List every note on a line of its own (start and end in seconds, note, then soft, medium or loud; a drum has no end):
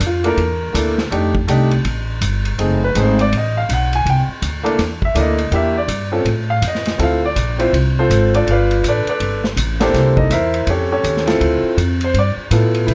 0.01 0.36 F2 medium
0.01 kick soft
0.01 hi-hat pedal medium
0.01 ride medium
0.06 0.26 F4 medium
0.24 0.36 A#3 medium
0.24 0.36 D4 medium
0.24 0.37 E4 medium
0.24 0.37 A4 medium
0.24 1.09 A#4 medium
0.24 ride soft
0.37 0.73 E2 medium
0.37 kick soft
0.37 ride medium
0.73 1.10 D2 medium
0.73 0.95 A#3 medium
0.73 0.95 D4 medium
0.73 0.96 E4 medium
0.73 0.96 A4 medium
0.73 kick soft
0.73 hi-hat pedal medium
0.73 ride medium
0.98 snare soft
1.11 1.47 F2 medium
1.11 1.32 A3 medium
1.11 1.32 D4 medium
1.11 1.32 D#4 medium
1.11 1.33 G4 medium
1.11 kick soft
1.11 ride medium
1.35 kick medium
1.48 1.84 C2 medium
1.48 1.69 A3 medium
1.48 1.69 D4 medium
1.48 1.69 D#4 medium
1.48 1.70 G4 medium
1.48 kick soft
1.48 hi-hat pedal medium
1.48 ride medium
1.71 ride soft
1.85 2.20 A1 medium
1.85 kick soft
1.85 ride medium
2.21 2.57 G1 medium
2.21 kick soft
2.21 hi-hat pedal medium
2.21 ride medium
2.45 ride soft
2.58 2.94 F#1 medium
2.58 2.79 A3 medium
2.58 2.79 C4 medium
2.58 2.80 D#4 medium
2.58 2.80 G#4 medium
2.58 kick soft
2.58 ride medium
2.84 2.96 B4 medium
2.95 3.31 G#1 medium
2.95 3.16 A3 medium
2.95 3.16 C4 medium
2.95 3.17 D#4 medium
2.95 3.17 G#4 medium
2.95 kick soft
2.95 hi-hat pedal medium
2.95 ride medium
3.00 3.20 C5 medium
3.19 3.33 D5 loud
3.19 ride soft
3.32 3.68 A1 medium
3.32 kick soft
3.32 ride medium
3.37 3.57 D#5 medium
3.57 3.70 F5 medium
3.69 4.05 B1 medium
3.69 kick soft
3.69 hi-hat pedal medium
3.69 ride medium
3.73 3.94 F#5 medium
3.93 4.07 G#5 loud
3.93 ride soft
4.05 4.27 C2 medium
4.05 kick soft
4.05 ride medium
4.10 4.22 G5 medium
4.28 muted upright bass stroke soft
4.42 4.77 D2 medium
4.42 kick soft
4.42 hi-hat pedal medium
4.42 ride medium
4.63 4.77 A#3 medium
4.63 4.77 D4 medium
4.63 4.77 E4 medium
4.63 4.77 A4 medium
4.63 ride soft
4.78 5.14 E2 medium
4.78 kick soft
4.78 snare soft
4.78 ride medium
5.02 5.17 E5 medium
5.02 kick medium
5.15 5.51 D2 medium
5.15 5.36 A#3 medium
5.15 5.36 D4 medium
5.15 5.37 E4 medium
5.15 5.37 A4 medium
5.15 kick soft
5.15 hi-hat pedal medium
5.15 ride medium
5.20 5.52 D#5 medium
5.38 ride soft
5.51 5.87 E2 medium
5.51 5.73 A#3 medium
5.51 5.73 D4 medium
5.51 5.74 E4 medium
5.51 5.74 G4 medium
5.51 kick soft
5.51 ride medium
5.55 5.77 E5 medium
5.78 6.24 D5 medium
5.88 6.24 G2 medium
5.88 kick soft
5.88 hi-hat pedal medium
5.88 ride medium
6.12 6.24 C4 medium
6.12 6.25 C#4 medium
6.12 6.25 F4 medium
6.12 6.25 A4 medium
6.25 6.61 A2 medium
6.25 kick soft
6.25 ride medium
6.50 6.63 F5 medium
6.62 6.98 F2 medium
6.62 kick soft
6.62 hi-hat pedal medium
6.62 ride medium
6.68 7.00 D#5 medium
6.75 snare soft
6.85 snare soft
6.85 ride soft
6.98 7.35 D2 medium
6.98 7.20 C4 medium
6.98 7.20 E4 medium
6.98 7.20 F4 medium
6.98 7.21 A4 medium
6.98 kick soft
6.98 ride medium
7.03 7.24 F5 medium
7.26 7.71 D5 medium
7.36 7.72 A#1 medium
7.36 kick soft
7.36 hi-hat pedal medium
7.36 ride medium
7.58 7.71 C4 medium
7.58 7.72 E4 medium
7.58 7.72 F4 medium
7.58 7.72 C5 medium
7.58 ride soft
7.73 8.09 C2 medium
7.73 kick soft
7.73 ride medium
7.99 8.33 C4 medium
7.99 8.33 F4 medium
7.99 8.32 A4 medium
7.99 8.32 C5 medium
8.09 8.45 G#1 medium
8.09 kick soft
8.09 hi-hat pedal medium
8.09 ride medium
8.34 8.48 D4 medium
8.34 8.48 F4 medium
8.34 8.48 A4 medium
8.34 8.47 D5 medium
8.34 ride soft
8.47 8.83 G1 medium
8.47 8.83 F5 medium
8.47 kick soft
8.47 ride medium
8.51 8.83 F4 medium
8.51 8.84 B4 medium
8.51 8.83 D5 medium
8.71 ride soft
8.84 9.05 A1 medium
8.84 kick soft
8.84 hi-hat pedal medium
8.84 ride medium
8.88 9.08 D4 medium
8.88 9.09 A4 medium
8.88 9.08 B4 medium
8.88 9.08 D5 medium
9.06 9.43 B4 medium
9.06 9.42 D5 medium
9.06 muted upright bass stroke soft
9.06 ride soft
9.10 9.43 D4 medium
9.10 9.43 A4 medium
9.20 9.56 G1 medium
9.20 kick soft
9.20 ride medium
9.44 snare soft
9.56 9.92 A1 medium
9.56 kick soft
9.56 hi-hat pedal medium
9.56 ride medium
9.80 10.28 A#3 medium
9.80 10.16 C4 medium
9.80 10.28 D4 medium
9.80 10.28 E4 medium
9.80 10.15 G4 medium
9.80 10.28 A4 medium
9.80 10.15 C5 medium
9.80 snare medium
9.80 ride soft
9.94 10.29 C2 medium
9.94 kick soft
9.94 snare soft
9.94 ride medium
10.17 10.30 D#4 medium
10.17 10.30 D#5 medium
10.17 kick medium
10.30 10.66 E2 medium
10.30 10.66 E4 medium
10.30 10.66 A#4 medium
10.30 10.66 C5 medium
10.30 10.65 E5 loud
10.30 kick soft
10.30 hi-hat pedal medium
10.30 ride medium
10.54 ride soft
10.67 11.03 F2 medium
10.67 10.91 C#4 medium
10.67 10.91 G4 medium
10.67 10.91 A4 medium
10.67 10.91 C#5 medium
10.67 kick soft
10.67 ride medium
10.92 11.26 C#4 medium
10.92 11.26 G4 medium
10.92 11.26 A4 medium
10.92 11.26 C#5 medium
11.03 11.39 D#2 medium
11.03 kick soft
11.03 hi-hat pedal medium
11.03 ride medium
11.17 snare soft
11.26 11.74 C4 medium
11.26 11.74 E4 medium
11.26 11.75 F4 medium
11.26 11.75 A4 medium
11.26 snare soft
11.26 ride soft
11.41 11.62 D2 medium
11.41 kick soft
11.41 ride medium
11.63 muted upright bass stroke soft
11.77 12.13 F2 medium
11.77 kick soft
11.77 hi-hat pedal medium
11.77 ride medium
12.01 12.16 C5 medium
12.01 ride soft
12.14 12.36 G2 medium
12.14 kick soft
12.14 ride medium
12.19 12.31 D5 medium
12.37 muted upright bass stroke soft
12.51 12.86 A2 medium
12.51 12.88 B3 medium
12.51 12.85 E4 medium
12.51 12.88 F4 medium
12.51 12.89 A4 medium
12.51 kick soft
12.51 hi-hat pedal medium
12.51 ride medium
12.74 ride soft
12.87 12.94 C2 medium
12.87 12.94 E3 medium
12.87 12.94 E4 medium
12.87 kick soft
12.87 ride medium